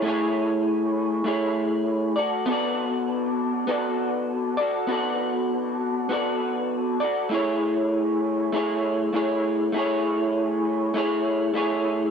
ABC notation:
X:1
M:4/4
L:1/8
Q:1/4=99
K:A
V:1 name="Clean electric guitar"
[A,EGc]4 [A,EGc]3 [FAd] | [B,FAd]4 [B,FAd]3 [FAd] | [B,FAd]4 [B,FAd]3 [FAd] | [A,EGc]4 [A,EGc]2 [A,EGc]2 |
[A,EGc]4 [A,EGc]2 [A,EGc]2 |]